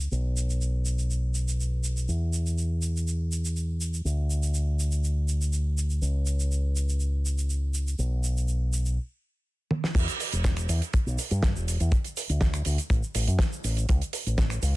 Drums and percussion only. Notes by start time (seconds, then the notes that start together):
0.00 shaker
0.12 shaker
0.37 shaker
0.50 shaker
0.61 shaker
0.86 shaker
0.99 shaker
1.11 shaker
1.35 shaker
1.48 shaker
1.60 shaker
1.84 shaker
1.97 shaker
2.09 shaker
2.33 shaker
2.46 shaker
2.58 shaker
2.82 shaker
2.97 shaker
3.08 shaker
3.32 shaker
3.45 shaker
3.56 shaker
3.81 shaker
3.94 shaker
4.06 shaker
4.30 shaker
4.43 shaker
4.54 shaker
4.80 shaker
4.92 shaker
5.04 shaker
5.28 shaker
5.42 shaker
5.53 shaker
5.78 shaker
5.90 shaker
6.02 shaker
6.26 shaker
6.40 shaker
6.52 shaker
6.76 shaker
6.89 shaker
7.00 shaker
7.26 shaker
7.38 shaker
7.50 shaker
7.74 shaker
7.87 shaker
7.99 shaker
8.24 shaker
8.37 shaker
8.48 shaker
8.73 shaker
8.85 shaker
9.71 high tom
9.84 snare
9.95 kick, closed hi-hat, crash, shaker
10.08 closed hi-hat, shaker
10.20 open hi-hat, shaker
10.32 closed hi-hat, shaker
10.44 kick, snare, closed hi-hat, shaker
10.56 finger snap, closed hi-hat, shaker
10.69 open hi-hat, shaker
10.82 closed hi-hat, shaker
10.93 kick, closed hi-hat, shaker
11.07 shaker
11.19 open hi-hat, shaker
11.31 closed hi-hat, shaker
11.43 kick, snare, closed hi-hat, shaker
11.56 shaker
11.68 open hi-hat, shaker
11.80 closed hi-hat, shaker
11.92 kick, closed hi-hat, shaker
12.04 closed hi-hat, shaker
12.17 open hi-hat, shaker
12.29 closed hi-hat, shaker
12.41 kick, snare, closed hi-hat, shaker
12.54 finger snap, closed hi-hat, shaker
12.65 open hi-hat, shaker
12.78 closed hi-hat, shaker
12.90 kick, closed hi-hat, shaker
13.03 shaker
13.15 open hi-hat, shaker
13.27 closed hi-hat, shaker
13.39 kick, snare, closed hi-hat, shaker
13.52 shaker
13.64 open hi-hat, shaker
13.77 closed hi-hat, shaker
13.89 kick, closed hi-hat, shaker
14.02 closed hi-hat, shaker
14.13 open hi-hat, shaker
14.27 closed hi-hat, shaker
14.38 kick, snare, closed hi-hat, shaker
14.50 finger snap, closed hi-hat, shaker
14.63 open hi-hat, shaker